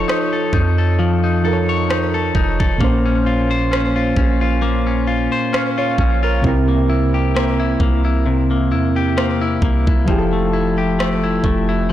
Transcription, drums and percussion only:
0.09 cross-stick loud
0.53 kick medium
1.90 cross-stick loud
2.35 kick medium
2.60 kick loud
2.81 kick loud
3.73 cross-stick loud
4.16 kick medium
5.54 cross-stick loud
5.98 kick medium
6.44 kick loud
7.36 cross-stick loud
7.80 kick medium
9.18 cross-stick loud
9.62 kick medium
9.87 kick loud
10.08 kick loud
11.00 cross-stick loud
11.44 kick medium

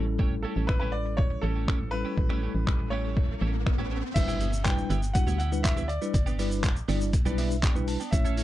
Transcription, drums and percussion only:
0.19 kick loud
0.69 finger snap loud
0.69 kick loud
1.18 kick loud
1.68 finger snap loud
1.68 kick loud
2.18 kick loud
2.30 finger snap medium
2.67 finger snap loud
2.67 kick loud
3.17 kick loud
3.66 finger snap loud
3.66 kick loud
4.16 kick loud
4.16 closed hi-hat medium
4.16 crash loud
4.16 shaker medium
4.28 shaker soft
4.41 closed hi-hat medium
4.41 shaker medium
4.53 shaker medium
4.65 kick loud
4.65 clap loud
4.65 closed hi-hat medium
4.65 shaker medium
4.78 shaker medium
4.90 closed hi-hat soft
4.90 shaker soft
5.03 shaker medium
5.15 kick loud
5.15 closed hi-hat medium
5.15 shaker medium
5.27 shaker medium
5.40 closed hi-hat medium
5.40 shaker medium
5.52 shaker medium
5.65 kick loud
5.65 clap loud
5.65 closed hi-hat medium
5.65 shaker medium
5.77 shaker medium
5.89 closed hi-hat medium
5.89 shaker medium
6.02 shaker medium
6.14 kick loud
6.14 closed hi-hat medium
6.14 shaker medium
6.27 shaker medium
6.39 open hi-hat medium
6.39 shaker medium
6.51 shaker medium
6.64 kick loud
6.64 clap loud
6.64 closed hi-hat medium
6.64 shaker medium
6.76 shaker medium
6.89 open hi-hat medium
6.89 shaker soft
7.01 shaker medium
7.13 kick loud
7.13 closed hi-hat medium
7.13 shaker medium
7.26 shaker soft
7.38 open hi-hat medium
7.38 shaker medium
7.51 shaker medium
7.63 kick loud
7.63 clap loud
7.63 closed hi-hat medium
7.63 shaker medium
7.75 shaker medium
7.88 open hi-hat medium
7.88 shaker medium
8.00 shaker medium
8.13 kick loud
8.13 closed hi-hat medium
8.13 shaker medium
8.25 shaker medium
8.37 open hi-hat medium
8.37 shaker medium

